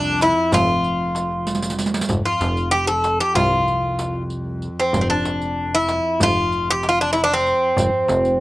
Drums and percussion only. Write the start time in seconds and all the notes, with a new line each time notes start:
0.21 riq, darbuka tek
0.52 riq, darbuka dum
0.84 riq
1.15 riq, darbuka tek
1.47 riq
1.55 riq
1.62 riq
1.70 riq
1.79 riq
1.86 riq
1.94 riq
2.01 riq
2.09 riq, darbuka dum
2.41 riq, darbuka tek
2.57 riq
3.04 riq, darbuka tek
3.35 riq, darbuka dum
3.68 riq
3.99 riq, darbuka tek
4.30 riq
4.62 riq, darbuka ka
4.94 riq, darbuka dum
5.25 riq, darbuka tek
5.42 riq
5.89 riq, darbuka tek
6.20 riq, darbuka dum
6.52 riq
6.83 riq, darbuka tek
7.15 riq
7.46 riq, darbuka ka
7.77 riq, darbuka dum
8.08 riq, darbuka tek
8.25 riq